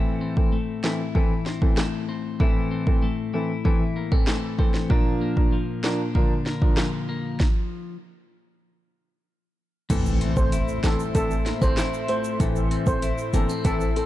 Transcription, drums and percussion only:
0.37 kick
0.84 snare, clap
1.15 kick
1.46 snare
1.62 kick
1.77 cross-stick, snare, clap
2.40 kick
2.87 kick
3.65 kick
4.12 kick
4.27 cross-stick, snare, clap
4.59 kick
4.74 snare
4.90 kick
5.37 kick
5.84 snare, clap
6.15 kick
6.46 snare
6.62 kick
6.77 cross-stick, snare, clap
7.40 kick, snare
9.90 kick, closed hi-hat, crash, shaker
10.06 shaker
10.21 closed hi-hat
10.37 kick, shaker
10.52 closed hi-hat, shaker
10.68 shaker
10.84 snare, clap, closed hi-hat, shaker
11.00 shaker
11.15 kick, closed hi-hat, shaker
11.31 shaker
11.46 snare, closed hi-hat
11.62 kick, shaker
11.77 cross-stick, snare, clap, closed hi-hat, shaker
11.94 shaker
12.08 closed hi-hat
12.24 shaker
12.40 kick, closed hi-hat, shaker
12.56 shaker
12.71 closed hi-hat
12.86 kick, shaker
13.02 closed hi-hat, shaker
13.18 shaker
13.33 closed hi-hat, shaker
13.49 shaker
13.65 kick, closed hi-hat, shaker
13.80 shaker
13.96 closed hi-hat

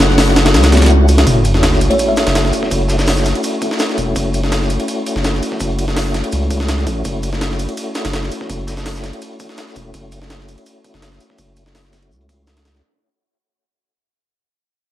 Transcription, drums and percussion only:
0.10 snare
0.18 snare, open hi-hat, shaker
0.28 snare
0.36 snare, ride, shaker
0.46 snare, ride, shaker
0.54 snare, ride, shaker
0.63 snare, ride, shaker
0.72 snare, ride, shaker
0.77 snare, ride
0.82 snare, ride
0.86 snare, ride, shaker
1.08 ride, shaker
1.18 snare, ride
1.27 kick, ride, shaker
1.45 ride, shaker
1.54 snare
1.62 snare, ride, shaker
1.72 snare, closed hi-hat
1.81 ride, shaker
1.91 ride
1.99 ride, shaker
2.16 snare, ride, shaker
2.27 snare, ride
2.35 snare, ride, shaker
2.45 snare
2.53 ride, shaker
2.63 kick, snare
2.71 kick, ride, shaker
2.81 closed hi-hat
2.88 snare, ride, shaker
2.98 snare, shaker
3.06 snare, open hi-hat, shaker
3.17 snare, shaker
3.25 snare, ride, shaker
3.35 ride
3.43 ride, shaker
3.53 closed hi-hat
3.61 kick, ride, shaker
3.71 snare
3.79 snare, ride, shaker
3.89 snare
3.98 kick, ride, shaker
4.16 kick, ride, shaker
4.34 ride, shaker
4.44 snare
4.52 snare, ride, shaker
4.62 snare, closed hi-hat
4.70 ride, shaker
4.80 ride
4.88 ride, shaker
5.06 ride, shaker
5.16 snare
5.24 snare, ride, shaker
5.34 snare
5.43 ride, shaker
5.51 kick, snare
5.60 kick, ride, shaker
5.70 closed hi-hat
5.79 ride
5.88 snare
5.96 snare, open hi-hat, shaker
6.06 snare
6.14 snare, ride, shaker
6.24 ride
6.32 ride, shaker
6.42 closed hi-hat
6.51 kick, ride, shaker
6.60 snare
6.68 snare, ride, shaker
6.78 snare
6.87 kick, ride, shaker
7.05 kick, ride, shaker
7.23 ride, shaker
7.33 snare
7.41 snare, ride, shaker
7.51 snare, closed hi-hat
7.59 ride, shaker
7.69 ride
7.77 ride, shaker
7.95 snare, ride, shaker
8.05 snare, ride
8.13 snare, ride, shaker
8.23 snare
8.31 ride, shaker
8.41 kick, snare
8.50 kick, ride, shaker
8.59 closed hi-hat
8.67 snare, ride, shaker
8.77 snare, shaker
8.85 snare, open hi-hat, shaker
8.94 snare, shaker
9.04 snare, ride, shaker
9.13 ride
9.22 ride, shaker
9.31 closed hi-hat
9.40 kick, ride, shaker
9.49 snare
9.57 snare, ride, shaker
9.68 snare
9.75 kick, ride, shaker
9.94 kick, ride, shaker
10.12 ride, shaker
10.22 snare
10.30 snare, ride, shaker
10.40 snare, closed hi-hat
10.48 ride, shaker
10.58 ride
10.66 ride, shaker
10.84 kick, ride, shaker
10.94 snare
11.02 snare, ride, shaker
11.12 snare
11.20 ride, shaker
11.30 kick, snare
11.38 kick, ride, shaker
11.48 closed hi-hat
11.56 ride, shaker
11.66 snare
11.75 snare, open hi-hat, shaker
11.84 snare
11.93 snare, ride, shaker
12.02 ride
12.12 shaker
12.21 closed hi-hat
12.29 kick, ride, shaker
12.47 snare, ride, shaker
12.57 snare, ride
12.65 snare, ride, shaker
12.75 snare

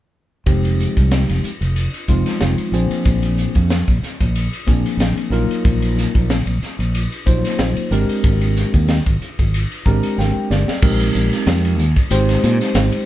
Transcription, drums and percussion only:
0.46 kick, ride
0.65 ride
0.80 hi-hat pedal
0.97 kick, ride
1.11 snare, ride
1.29 snare, ride
1.44 hi-hat pedal
1.62 ride
1.76 ride
1.94 ride
2.08 kick, hi-hat pedal
2.26 snare, ride
2.40 snare, ride
2.58 ride
2.73 hi-hat pedal
2.91 ride
3.05 kick, ride
3.23 ride
3.38 hi-hat pedal
3.55 kick, ride
3.70 snare, ride
3.88 kick, ride
4.03 snare, hi-hat pedal
4.21 kick, ride
4.36 ride
4.53 ride
4.67 kick, hi-hat pedal
4.86 ride
5.00 snare, ride
5.18 ride
5.32 hi-hat pedal
5.51 ride
5.65 kick, ride
5.82 ride
5.98 snare, hi-hat pedal
6.15 kick, ride
6.30 snare, ride
6.47 ride
6.62 snare, hi-hat pedal
6.80 ride
6.95 ride
7.12 ride
7.27 kick, hi-hat pedal
7.45 snare, ride
7.59 snare, ride
7.76 ride
7.91 hi-hat pedal
8.09 ride
8.24 kick, ride
8.41 ride
8.56 snare, hi-hat pedal
8.74 kick, ride
8.88 snare, ride
9.06 kick, ride
9.21 hi-hat pedal
9.39 kick, ride
9.54 ride
9.72 ride
9.86 kick, hi-hat pedal
10.03 ride
10.19 snare
10.51 snare, hi-hat pedal
10.68 snare
10.82 kick, crash
11.00 ride
11.14 hi-hat pedal
11.33 snare, ride
11.47 snare, hi-hat pedal, ride
11.65 ride
11.79 hi-hat pedal
11.96 kick, ride
12.11 hi-hat pedal, ride
12.29 snare, ride
12.43 snare, hi-hat pedal
12.61 snare, ride
12.75 snare, hi-hat pedal, ride
12.92 ride

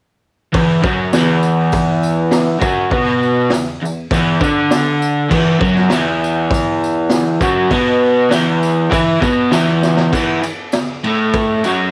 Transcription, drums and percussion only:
0.54 kick, open hi-hat, tambourine
0.84 kick, tambourine
1.13 snare, open hi-hat, tambourine
1.43 tambourine
1.72 kick, open hi-hat, tambourine
2.03 tambourine
2.31 snare, open hi-hat, tambourine
2.62 kick, tambourine
2.91 kick, open hi-hat, tambourine
3.23 tambourine
3.50 snare, open hi-hat, tambourine
3.85 tambourine
4.11 kick, open hi-hat, tambourine
4.41 kick, tambourine
4.71 snare, open hi-hat, tambourine
5.02 tambourine
5.31 kick, crash, tambourine
5.61 kick, tambourine
5.75 snare
5.89 snare, open hi-hat, tambourine
6.24 tambourine
6.50 kick, open hi-hat, tambourine
6.84 tambourine
7.09 snare, open hi-hat, tambourine
7.41 kick, tambourine
7.70 kick, open hi-hat, tambourine
8.31 snare, open hi-hat, tambourine
8.63 tambourine
8.92 kick, open hi-hat, tambourine
9.22 kick, tambourine
9.52 snare, open hi-hat, tambourine
9.67 snare
9.83 snare, tambourine
9.97 snare
10.13 kick, crash, tambourine
10.43 ride, tambourine
10.72 snare, ride, tambourine
11.04 ride
11.33 kick, ride, tambourine
11.64 ride, tambourine

